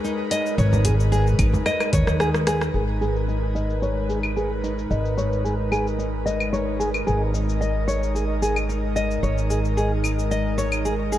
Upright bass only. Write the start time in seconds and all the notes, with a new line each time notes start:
0.58 G#1
1.39 G#1
1.93 D#2
2.07 D#2
2.74 G#1
4.90 G#1
7.07 G#1
9.23 G#1